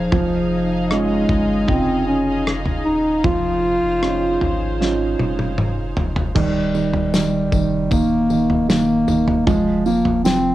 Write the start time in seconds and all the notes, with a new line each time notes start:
Already playing: F3 D#4 F4 G#4 F5, downlifter
0.12 F1 F3 D#5, kick, floor tom
0.90 G#3 C#4 D#4 F4, cross-stick
1.29 G1, kick, floor tom
1.68 F1 C#3 C4 D#4 F4, kick, floor tom
2.08 C#4
2.47 cross-stick
2.65 floor tom
2.85 D#1 D#4
3.24 F1 F3 F4 C5, kick, floor tom
3.83 F1
4.02 C#4 D#4 F4, cross-stick
4.41 G#1, floor tom
4.80 C#4 D#4 F4, snare
5.19 F1, high tom
5.39 high tom
5.58 mid tom
5.97 F1, floor tom
6.16 floor tom
6.35 D#1 D#3 G3, kick, floor tom, crash
6.75 D#3, tambourine
6.94 floor tom
7.14 D#3 G3, snare, tambourine
7.52 F1 D#3, kick, tambourine
7.91 D#1 D#3 A#3, kick, floor tom, tambourine
8.30 D#3, tambourine
8.50 floor tom
8.69 D#3 A#3, snare, tambourine
9.08 D#1 D#3, floor tom, tambourine
9.28 floor tom
9.46 F1 F3 G#3, kick, floor tom, tambourine
9.86 F3 A#3, tambourine
10.05 F1, floor tom
10.24 F3 C4, snare, tambourine